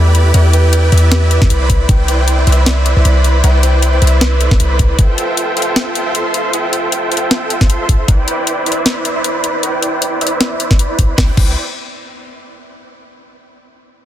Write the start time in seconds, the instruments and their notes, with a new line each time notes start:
Already playing: 808-style bass E2, supersaw synth E4 G4 B4 D5 B5, kalimba A4
0.15 closed hi-hat
0.34 808-style bass E2, supersaw synth E4 G4 B4 D5 G5, kalimba E5, closed hi-hat
0.53 kalimba B4, closed hi-hat
0.73 closed hi-hat
0.84 kalimba B4
0.92 808-style bass E2, supersaw synth E4 G4 B4 D5 E5, closed hi-hat
0.98 closed hi-hat
1.12 kalimba B4, snare, closed hi-hat
1.31 kalimba B4, closed hi-hat
1.42 808-style bass E2, supersaw synth E4 G4 B4 D5 E5, kick, snare
1.50 808-style bass C2, supersaw synth E4 B4 C5 D5 B5, closed hi-hat
1.70 kick, closed hi-hat
1.89 808-style bass C2, kalimba G5, kick, closed hi-hat
2.08 kalimba E5, closed hi-hat
2.28 closed hi-hat
2.38 kalimba E5
2.47 808-style bass C2, supersaw synth E4 B4 C5 D5 E5, closed hi-hat
2.52 closed hi-hat
2.66 kalimba D5, snare, closed hi-hat
2.86 kalimba D5, closed hi-hat
2.96 808-style bass C2, supersaw synth E4 B4 C5 D5 E5
3.05 808-style bass C2, supersaw synth E4 B4 C5 D5 B5, closed hi-hat
3.24 closed hi-hat
3.44 808-style bass C2, supersaw synth E4 B4 C5 D5 G5, kalimba E5, closed hi-hat
3.63 kalimba C5, closed hi-hat
3.82 closed hi-hat
3.93 kalimba C5
4.02 808-style bass C2, supersaw synth E4 B4 C5 D5 E5, closed hi-hat
4.07 closed hi-hat
4.21 kalimba B4, snare, closed hi-hat
4.41 kalimba A4, closed hi-hat
4.51 808-style bass C2, kick, snare
4.60 808-style bass C2, supersaw synth E4 B4 C5 D5 B5, closed hi-hat
4.79 kick, closed hi-hat
4.99 supersaw synth F4 A4 C5 E5 G5, kick, closed hi-hat
5.18 closed hi-hat
5.37 closed hi-hat
5.57 supersaw synth F4 A4 C5 E5 G5, closed hi-hat
5.62 closed hi-hat
5.76 snare, closed hi-hat
5.95 closed hi-hat
6.06 supersaw synth F4 A4 C5 E5 G5
6.15 supersaw synth F4 A4 C5 E5 C6, closed hi-hat
6.34 closed hi-hat
6.53 supersaw synth F4 A4 C5 E5 G5, closed hi-hat
6.73 closed hi-hat
6.92 closed hi-hat
7.11 supersaw synth F4 A4 C5 E5 G5, closed hi-hat
7.17 closed hi-hat
7.31 snare, closed hi-hat
7.50 closed hi-hat
7.61 supersaw synth F4 A4 C5 E5 G5, kick, snare
7.70 supersaw synth F4 A4 C5 E5 C6, closed hi-hat
7.89 kick, closed hi-hat
8.08 supersaw synth E4 D5 G5, kick, closed hi-hat
8.28 closed hi-hat
8.47 closed hi-hat
8.66 supersaw synth E4 B4 C5 D5 E5, closed hi-hat
8.72 closed hi-hat
8.86 snare, closed hi-hat
9.05 closed hi-hat
9.16 supersaw synth E4 B4 C5 D5 E5
9.24 supersaw synth E4 B4 C5 D5 B5, closed hi-hat
9.44 closed hi-hat
9.63 supersaw synth E4 B4 C5 D5 G5, closed hi-hat
9.83 closed hi-hat
10.02 closed hi-hat
10.21 supersaw synth E4 B4 C5 D5 E5, closed hi-hat
10.27 closed hi-hat
10.41 snare, closed hi-hat
10.60 closed hi-hat
10.71 supersaw synth D5, kick, snare
10.79 supersaw synth E4 B4 C5 D5 B5, closed hi-hat
10.99 kick, closed hi-hat
11.18 808-style bass C2, supersaw synth E4 B4 C5 D5 G5, kick, snare
11.37 808-style bass C2, supersaw synth E4 B4 C5 D5 G5, kick, crash